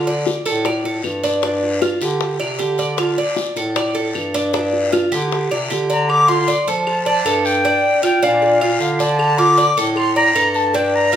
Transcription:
Already playing: bass clarinet D3
0.07 cuban tres D5, high bongo
0.26 high bongo, short guiro
0.45 bass clarinet A2, cuban tres A4, high bongo, short guiro
0.65 cuban tres D5, high bongo, long guiro, claves
0.84 cuban tres A4, high bongo
1.03 bass clarinet G2, high bongo, low bongo, short guiro, claves
1.23 cuban tres D4, short guiro
1.42 cuban tres D4, high bongo, long guiro
1.63 high bongo
1.81 cuban tres F4, high bongo, short guiro, claves
2.01 bass clarinet D3, cuban tres G4, high bongo, short guiro
2.20 high bongo, long guiro
2.39 bass clarinet C3, cuban tres D5, high bongo, claves
2.59 bass clarinet D3, cuban tres G4, high bongo, low bongo, short guiro
2.78 cuban tres D5, short guiro
2.97 cuban tres F4, high bongo, long guiro, claves
3.17 cuban tres D5, high bongo
3.36 high bongo, short guiro
3.56 bass clarinet A2, cuban tres A4, high bongo, short guiro
3.76 cuban tres D5, high bongo, long guiro, claves
3.95 cuban tres A4, high bongo
4.15 bass clarinet G2, high bongo, low bongo, short guiro, claves
4.34 cuban tres D4, short guiro
4.53 cuban tres D4, high bongo, long guiro
4.73 high bongo
4.92 cuban tres F4, high bongo, short guiro, claves
5.12 bass clarinet D3, cuban tres G4, high bongo, short guiro
5.31 high bongo, long guiro
5.51 bass clarinet C3, cuban tres D5, high bongo, claves
5.70 bass clarinet D3, cuban tres G4, high bongo, low bongo, short guiro
5.90 cuban tres D5, flute A#5, short guiro
6.09 flute D6, cowbell, long guiro, claves
6.28 cuban tres F4, flute C6
6.48 cuban tres D5, cowbell, short guiro
6.67 bass clarinet F3, cuban tres A4, cowbell, short guiro
6.87 flute A5, cowbell, long guiro, claves
7.06 cuban tres D5, flute A5
7.25 bass clarinet G2, cuban tres A4, cowbell, short guiro, claves
7.45 flute G5, cowbell, short guiro
7.64 cuban tres D4, cowbell, long guiro
8.03 cuban tres F4, flute G5, cowbell, short guiro, claves
8.22 bass clarinet A#2, cuban tres D4, flute F5, cowbell, short guiro
8.42 cowbell, long guiro
8.61 cuban tres F4, claves
8.80 bass clarinet D3, cowbell, short guiro
8.99 cuban tres D5, flute A5, cowbell, short guiro
9.19 cowbell, long guiro, claves
9.38 cuban tres F4, flute D6
9.57 cuban tres D5, cowbell, short guiro
9.76 bass clarinet A2, cuban tres A4, cowbell, short guiro
9.96 flute C6, cowbell, long guiro, claves
10.16 cuban tres D5, flute A#5
10.34 bass clarinet G2, cuban tres A4, cowbell, short guiro, claves
10.54 flute A5, cowbell, short guiro
10.74 cuban tres D4, flute G5, cowbell, long guiro
10.95 flute A#5
11.12 cuban tres F4, cowbell, short guiro

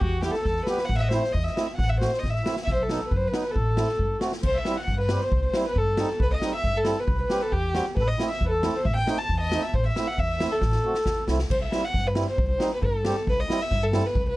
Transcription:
0.00 upright bass E2, violin F#4, accordion F#4, kick
0.22 accordion G3 B3 E4 G4, violin G4, snare
0.32 violin A4, snare
0.36 accordion A4
0.44 upright bass E2, violin A4, accordion A4, kick, snare
0.56 snare
0.65 accordion G3 B3 G4, violin B4, snare
0.70 accordion B4
0.78 snare
0.85 upright bass A1, violin F#5
0.90 accordion F#5, kick
0.97 violin E5
1.02 violin D#5 E5
1.09 accordion A3 C4 E4 E5, violin C5, snare
1.15 accordion C5
1.24 snare
1.32 upright bass E2, violin D#5, kick
1.37 accordion D#5
1.44 violin E5, snare
1.56 accordion A3 C4 E4, snare
1.77 upright bass A1, violin F#5, accordion F#5, kick
1.89 violin E5
2.00 accordion A3 C4 F#4 C5, violin C5, snare
2.13 snare
2.19 violin D#5, accordion D#5
2.23 upright bass A1, kick, snare
2.30 violin E5, accordion E5
2.35 snare
2.44 accordion A3 C4 E4, snare
2.56 snare
2.64 violin E5, accordion E5, kick
2.68 upright bass B1, snare
2.74 violin C5
2.83 violin A4
2.88 accordion F#3 B3 D#4 A4, snare
3.07 violin B4, accordion B4
3.11 upright bass F#2, kick
3.17 violin C5
3.28 violin B4
3.32 accordion F#3 B3 D#4 B4, snare
3.51 violin A4
3.55 upright bass A1, accordion A4, kick
3.77 accordion A3 C4 E4, snare
3.88 snare
3.99 upright bass G2, kick
4.21 accordion A3 C4 F#4, snare
4.32 snare
4.43 upright bass C2, accordion C5, violin C5, kick, crash
4.53 accordion E5
4.58 violin E5
4.65 accordion G3 C4 E4, snare
4.76 accordion F#5
4.80 violin F#5
4.87 upright bass G2, kick
4.97 accordion B4
5.01 violin B4
5.09 accordion G3 C4 G4, snare
5.18 accordion C5
5.24 violin C5
5.32 upright bass C2, kick
5.42 accordion C5
5.47 violin C5
5.54 accordion G3 C4 E4, snare
5.65 accordion B4, violin B4
5.76 upright bass G2, accordion A4, violin A4, kick
5.97 accordion G3 C4 D#4, snare
6.19 upright bass C2, accordion B4, violin B4, kick
6.32 accordion D#5, violin D#5
6.42 accordion G3 C4 D#4, snare
6.54 accordion E5, violin E5
6.64 upright bass G2, kick
6.77 accordion A4, violin A4
6.84 accordion G3 C4 E4, snare
7.00 accordion B4, violin B4
7.07 upright bass C2, kick
7.22 violin B4
7.30 accordion G3 C4 G4, snare
7.43 violin A4
7.52 upright bass E2, violin G4, accordion G4, kick
7.74 accordion G3 C4 F#4, snare
7.96 upright bass A1, accordion A4 B4, violin B4, kick
8.03 accordion B4
8.07 accordion D#5, violin D#5
8.18 accordion A3 C4 E4, snare
8.29 accordion E5, violin E5
8.41 upright bass E2, accordion B4, kick
8.50 violin A4, accordion A4
8.63 accordion A3 C4 E4, snare
8.76 violin C5
8.85 upright bass A1, accordion E5, violin E5, kick
8.97 violin G5, accordion G5
9.07 accordion A3 C4 D#4, snare
9.17 accordion A5, violin A5
9.29 upright bass E2, kick
9.41 violin D#5
9.52 accordion A3 C4 D#4, snare
9.62 violin E5
9.73 upright bass A1, accordion C5, violin C5, kick
9.86 accordion E5, violin E5
9.96 accordion A3 C4 E4, snare
10.07 violin F#5
10.17 upright bass E2, accordion E5, violin E5, kick
10.40 accordion A3 C4 E4, snare
10.51 accordion A4, violin A4
10.61 upright bass A1, kick, snare
10.72 snare
10.85 accordion A3 C4 F#4
10.94 snare
11.06 upright bass D#2, kick, snare
11.27 upright bass C2, accordion A3 C4 E4, snare
11.39 snare
11.50 upright bass C2, violin C5, kick, crash
11.63 violin E5
11.72 accordion G3 C4 E4, snare
11.85 violin F#5
11.94 upright bass G2, kick
12.07 violin B4
12.15 accordion G3 C4 E4, snare
12.30 violin C5
12.38 upright bass C2, kick
12.49 violin C5
12.59 accordion G3 C4 D#4, snare
12.74 violin B4
12.82 upright bass G2, violin A4, kick
13.05 accordion G3 C4 G4, snare
13.27 upright bass C2, violin B4, kick
13.40 violin D#5
13.49 accordion G3 C4 E4, snare
13.62 violin E5
13.71 upright bass G2, kick, snare
13.84 violin A4
13.93 accordion G3 C4 E4, snare
14.06 violin B4
14.15 upright bass C2, kick
14.30 violin B4

